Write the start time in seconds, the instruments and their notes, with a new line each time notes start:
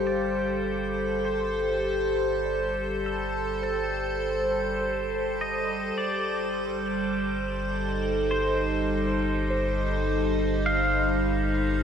Already playing: sub bass G1, ambient pad G3 G4 A4 C5 F5, glass harmonica G6
0.07 synth keys C5, pedal steel guitar D5
0.44 synth keys F5
0.78 synth keys G5
1.25 pedal steel guitar C5
2.45 synth keys D5
3.06 pedal steel guitar A4
3.62 pedal steel guitar A4, synth keys C5
4.80 synth keys A4
5.15 synth keys C5
5.41 pedal steel guitar D#5
5.97 sub bass G1, ambient pad G3, pedal steel guitar D5
7.48 ambient pad D#4
8.31 pedal steel guitar C5
9.50 synth keys C5
10.66 pedal steel guitar F5